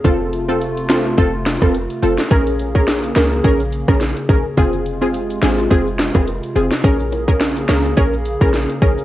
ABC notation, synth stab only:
X:1
M:4/4
L:1/16
Q:"Swing 16ths" 1/4=106
K:Bbm
V:1 name="Synth stab"
[CF=A]3 [CFA]3 [CFA]2 [CFA] z2 [CFA] z2 [CFA] z | [DAB]3 [DAB]3 [DAB]2 [DAB] z2 [DAB] z2 [DAB] z | [CFA]3 [CFA]3 [CFA]2 [CFA] z2 [CFA] z2 [CFA] z | [DAB]3 [DAB]3 [DAB]2 [DAB] z2 [DAB]3 [DAB]2 |]